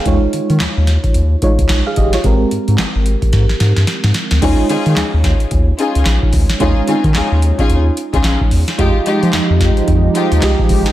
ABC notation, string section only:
X:1
M:4/4
L:1/16
Q:"Swing 16ths" 1/4=110
K:Ebmix
V:1 name="String section"
z16 | z16 | [DEFA] z [DEFA] z6 z [DEFA] z4 z | [DEFA] z [DEFA] z [DEFA] z2 [DEFA] z3 [DEFA] z4 |
[A,EFG] z [A,EFG] z6 z [A,EFG] z4 z |]